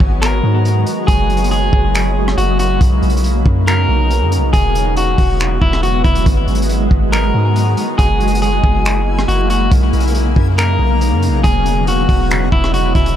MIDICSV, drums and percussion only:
0, 0, Header, 1, 2, 480
1, 0, Start_track
1, 0, Key_signature, 5, "major"
1, 0, Tempo, 431655
1, 1203, Time_signature, 4, 2, 24, 8
1, 14638, End_track
2, 0, Start_track
2, 0, Title_t, "Drums"
2, 3, Note_on_c, 9, 36, 97
2, 114, Note_off_c, 9, 36, 0
2, 244, Note_on_c, 9, 42, 84
2, 254, Note_on_c, 9, 26, 112
2, 355, Note_off_c, 9, 42, 0
2, 365, Note_off_c, 9, 26, 0
2, 725, Note_on_c, 9, 42, 70
2, 836, Note_off_c, 9, 42, 0
2, 962, Note_on_c, 9, 42, 65
2, 1074, Note_off_c, 9, 42, 0
2, 1203, Note_on_c, 9, 36, 113
2, 1203, Note_on_c, 9, 42, 77
2, 1314, Note_off_c, 9, 42, 0
2, 1315, Note_off_c, 9, 36, 0
2, 1443, Note_on_c, 9, 42, 39
2, 1523, Note_off_c, 9, 42, 0
2, 1523, Note_on_c, 9, 42, 55
2, 1604, Note_off_c, 9, 42, 0
2, 1604, Note_on_c, 9, 42, 70
2, 1683, Note_off_c, 9, 42, 0
2, 1683, Note_on_c, 9, 42, 77
2, 1794, Note_off_c, 9, 42, 0
2, 1923, Note_on_c, 9, 36, 95
2, 2034, Note_off_c, 9, 36, 0
2, 2164, Note_on_c, 9, 42, 87
2, 2174, Note_on_c, 9, 26, 124
2, 2275, Note_off_c, 9, 42, 0
2, 2285, Note_off_c, 9, 26, 0
2, 2535, Note_on_c, 9, 37, 108
2, 2645, Note_on_c, 9, 42, 76
2, 2646, Note_off_c, 9, 37, 0
2, 2757, Note_off_c, 9, 42, 0
2, 2883, Note_on_c, 9, 42, 66
2, 2994, Note_off_c, 9, 42, 0
2, 3123, Note_on_c, 9, 42, 77
2, 3124, Note_on_c, 9, 36, 108
2, 3235, Note_off_c, 9, 36, 0
2, 3235, Note_off_c, 9, 42, 0
2, 3364, Note_on_c, 9, 42, 38
2, 3444, Note_off_c, 9, 42, 0
2, 3444, Note_on_c, 9, 42, 54
2, 3524, Note_off_c, 9, 42, 0
2, 3524, Note_on_c, 9, 42, 68
2, 3604, Note_off_c, 9, 42, 0
2, 3604, Note_on_c, 9, 42, 78
2, 3715, Note_off_c, 9, 42, 0
2, 3843, Note_on_c, 9, 36, 98
2, 3954, Note_off_c, 9, 36, 0
2, 4084, Note_on_c, 9, 42, 86
2, 4094, Note_on_c, 9, 26, 115
2, 4195, Note_off_c, 9, 42, 0
2, 4205, Note_off_c, 9, 26, 0
2, 4566, Note_on_c, 9, 42, 76
2, 4677, Note_off_c, 9, 42, 0
2, 4803, Note_on_c, 9, 42, 65
2, 4914, Note_off_c, 9, 42, 0
2, 5042, Note_on_c, 9, 42, 72
2, 5043, Note_on_c, 9, 36, 112
2, 5153, Note_off_c, 9, 42, 0
2, 5155, Note_off_c, 9, 36, 0
2, 5285, Note_on_c, 9, 42, 63
2, 5396, Note_off_c, 9, 42, 0
2, 5522, Note_on_c, 9, 42, 80
2, 5633, Note_off_c, 9, 42, 0
2, 5762, Note_on_c, 9, 46, 50
2, 5763, Note_on_c, 9, 36, 96
2, 5874, Note_off_c, 9, 36, 0
2, 5874, Note_off_c, 9, 46, 0
2, 6004, Note_on_c, 9, 42, 83
2, 6014, Note_on_c, 9, 26, 121
2, 6115, Note_off_c, 9, 42, 0
2, 6125, Note_off_c, 9, 26, 0
2, 6245, Note_on_c, 9, 36, 97
2, 6356, Note_off_c, 9, 36, 0
2, 6375, Note_on_c, 9, 37, 101
2, 6485, Note_on_c, 9, 42, 73
2, 6486, Note_off_c, 9, 37, 0
2, 6596, Note_off_c, 9, 42, 0
2, 6722, Note_on_c, 9, 36, 104
2, 6723, Note_on_c, 9, 42, 39
2, 6833, Note_off_c, 9, 36, 0
2, 6835, Note_off_c, 9, 42, 0
2, 6843, Note_on_c, 9, 42, 70
2, 6955, Note_off_c, 9, 42, 0
2, 6963, Note_on_c, 9, 42, 76
2, 6964, Note_on_c, 9, 36, 108
2, 7074, Note_off_c, 9, 42, 0
2, 7075, Note_off_c, 9, 36, 0
2, 7203, Note_on_c, 9, 42, 40
2, 7283, Note_off_c, 9, 42, 0
2, 7283, Note_on_c, 9, 42, 52
2, 7363, Note_off_c, 9, 42, 0
2, 7363, Note_on_c, 9, 42, 68
2, 7442, Note_off_c, 9, 42, 0
2, 7442, Note_on_c, 9, 42, 78
2, 7554, Note_off_c, 9, 42, 0
2, 7683, Note_on_c, 9, 36, 96
2, 7794, Note_off_c, 9, 36, 0
2, 7923, Note_on_c, 9, 42, 84
2, 7933, Note_on_c, 9, 26, 112
2, 8034, Note_off_c, 9, 42, 0
2, 8044, Note_off_c, 9, 26, 0
2, 8405, Note_on_c, 9, 42, 75
2, 8517, Note_off_c, 9, 42, 0
2, 8643, Note_on_c, 9, 42, 63
2, 8754, Note_off_c, 9, 42, 0
2, 8883, Note_on_c, 9, 42, 75
2, 8884, Note_on_c, 9, 36, 115
2, 8994, Note_off_c, 9, 42, 0
2, 8995, Note_off_c, 9, 36, 0
2, 9123, Note_on_c, 9, 42, 40
2, 9203, Note_off_c, 9, 42, 0
2, 9203, Note_on_c, 9, 42, 51
2, 9283, Note_off_c, 9, 42, 0
2, 9283, Note_on_c, 9, 42, 68
2, 9362, Note_off_c, 9, 42, 0
2, 9362, Note_on_c, 9, 42, 75
2, 9474, Note_off_c, 9, 42, 0
2, 9603, Note_on_c, 9, 36, 96
2, 9714, Note_off_c, 9, 36, 0
2, 9844, Note_on_c, 9, 42, 86
2, 9854, Note_on_c, 9, 26, 118
2, 9956, Note_off_c, 9, 42, 0
2, 9966, Note_off_c, 9, 26, 0
2, 10215, Note_on_c, 9, 37, 101
2, 10325, Note_on_c, 9, 42, 73
2, 10326, Note_off_c, 9, 37, 0
2, 10437, Note_off_c, 9, 42, 0
2, 10563, Note_on_c, 9, 42, 67
2, 10675, Note_off_c, 9, 42, 0
2, 10803, Note_on_c, 9, 42, 75
2, 10804, Note_on_c, 9, 36, 111
2, 10914, Note_off_c, 9, 42, 0
2, 10915, Note_off_c, 9, 36, 0
2, 11044, Note_on_c, 9, 42, 41
2, 11124, Note_off_c, 9, 42, 0
2, 11124, Note_on_c, 9, 42, 54
2, 11204, Note_off_c, 9, 42, 0
2, 11204, Note_on_c, 9, 42, 70
2, 11283, Note_off_c, 9, 42, 0
2, 11283, Note_on_c, 9, 42, 79
2, 11395, Note_off_c, 9, 42, 0
2, 11523, Note_on_c, 9, 36, 95
2, 11634, Note_off_c, 9, 36, 0
2, 11764, Note_on_c, 9, 42, 85
2, 11774, Note_on_c, 9, 26, 113
2, 11875, Note_off_c, 9, 42, 0
2, 11885, Note_off_c, 9, 26, 0
2, 12245, Note_on_c, 9, 42, 75
2, 12356, Note_off_c, 9, 42, 0
2, 12482, Note_on_c, 9, 42, 63
2, 12593, Note_off_c, 9, 42, 0
2, 12722, Note_on_c, 9, 42, 77
2, 12723, Note_on_c, 9, 36, 111
2, 12834, Note_off_c, 9, 42, 0
2, 12835, Note_off_c, 9, 36, 0
2, 12964, Note_on_c, 9, 42, 64
2, 13075, Note_off_c, 9, 42, 0
2, 13203, Note_on_c, 9, 42, 78
2, 13314, Note_off_c, 9, 42, 0
2, 13443, Note_on_c, 9, 36, 94
2, 13444, Note_on_c, 9, 46, 47
2, 13554, Note_off_c, 9, 36, 0
2, 13555, Note_off_c, 9, 46, 0
2, 13684, Note_on_c, 9, 42, 86
2, 13694, Note_on_c, 9, 26, 114
2, 13795, Note_off_c, 9, 42, 0
2, 13805, Note_off_c, 9, 26, 0
2, 13925, Note_on_c, 9, 36, 98
2, 14036, Note_off_c, 9, 36, 0
2, 14055, Note_on_c, 9, 37, 104
2, 14165, Note_on_c, 9, 42, 76
2, 14166, Note_off_c, 9, 37, 0
2, 14276, Note_off_c, 9, 42, 0
2, 14402, Note_on_c, 9, 36, 104
2, 14404, Note_on_c, 9, 42, 39
2, 14513, Note_off_c, 9, 36, 0
2, 14515, Note_off_c, 9, 42, 0
2, 14524, Note_on_c, 9, 42, 70
2, 14635, Note_off_c, 9, 42, 0
2, 14638, End_track
0, 0, End_of_file